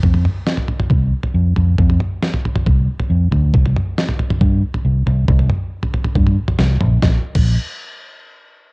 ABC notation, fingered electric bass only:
X:1
M:4/4
L:1/16
Q:1/4=137
K:Fmix
V:1 name="Fingered electric bass" clef=bass
F,,2 z6 C,,2 z2 F,,2 F,,2 | F,,2 z6 C,,2 z2 F,,2 D,,2 | C,,2 z6 G,,2 z2 C,,2 C,,2 | C,,2 z6 G,,2 z2 C,,2 B,,,2 |
B,,, z2 B,,,2 z8 z3 |]